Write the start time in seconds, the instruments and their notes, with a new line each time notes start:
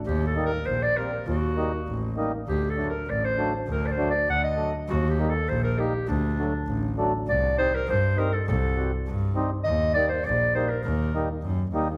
0.05 double bass D#2, clarinet G4
0.26 clarinet A4
0.36 accordion G3 A#3 D#4
0.46 clarinet A#4
0.65 double bass A#1, clarinet C5
0.82 clarinet D5
0.96 accordion G3 A#3 C4, clarinet A#4
1.25 double bass D#2, clarinet F#4
1.56 accordion G3 A#3 D#4
1.87 double bass A1
2.17 accordion G3 A#3 D#4
2.47 double bass D2, clarinet G4
2.70 clarinet A4
2.77 accordion F#3 A3 D4
2.89 clarinet A#4
3.07 double bass A1, clarinet D5
3.24 clarinet C5
3.38 accordion F#3 A3 D4
3.66 double bass D2
3.72 clarinet A#4
3.86 clarinet D5
3.91 clarinet C5
3.98 accordion F#3 A3 D4
4.10 clarinet D5
4.27 double bass D2, clarinet F#5
4.44 clarinet D#5
4.57 accordion F#3 A3 D4
4.88 double bass D#2, clarinet F#4
5.09 clarinet G4
5.19 accordion G3 A#3 D#4
5.29 clarinet A4
5.48 double bass A#1, clarinet C5
5.64 clarinet A#4
5.78 accordion G3 A#3 D#4, clarinet G4
6.07 double bass D2, clarinet D4
6.39 accordion F#3 A3 D4
6.66 double bass A1
6.98 accordion F#3 A3 D4
7.27 double bass C2, clarinet D5
7.58 accordion G3 C4 D#4, clarinet C5
7.75 clarinet A#4
7.87 double bass G2, clarinet C5
8.17 accordion G3 C4 D#4, clarinet A#4
8.33 clarinet A4
8.47 double bass C2, clarinet A4
8.77 accordion G3 C4 F#4
9.06 double bass G2
9.36 accordion G3 C4 D#4
9.64 double bass D#2, clarinet D#5
9.94 accordion G3 A#3 D#4, clarinet D5
10.09 clarinet C5
10.24 double bass A#1, clarinet D5
10.55 accordion G3 A#3 D#4, clarinet C5
10.69 clarinet A#4
10.83 double bass D#2, clarinet A#4
11.14 accordion G3 A#3 D#4
11.42 double bass F#2
11.71 double bass D#2, accordion G3 A#3 D#4